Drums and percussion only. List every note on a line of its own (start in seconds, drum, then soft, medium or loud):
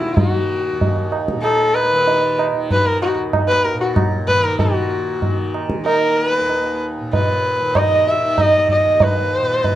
0.02 tabla te medium
0.17 tabla tin loud
0.17 tabla ge loud
0.81 tabla tin medium
0.81 tabla ge medium
1.12 tabla na medium
1.28 tabla ke medium
1.44 tabla na medium
1.75 tabla na medium
2.08 tabla tin medium
2.39 tabla na medium
2.71 tabla tin medium
2.71 tabla ge medium
3.02 tabla na medium
3.33 tabla na medium
3.33 tabla ge medium
3.65 tabla te medium
3.96 tabla na medium
3.96 tabla ge medium
4.28 tabla ge medium
4.59 tabla tin loud
4.59 tabla ge medium
5.22 tabla tin medium
5.22 tabla ge medium
5.54 tabla na medium
5.70 tabla ke medium
5.86 tabla na medium
6.50 tabla tin medium
7.13 tabla tin medium
7.13 tabla ge medium
7.75 tabla na medium
7.75 tabla ge medium
8.07 tabla te medium
8.38 tabla na medium
8.38 tabla ge medium
8.69 tabla ge soft
9.00 tabla tin loud
9.00 tabla ge loud
9.64 tabla tin medium
9.64 tabla ge medium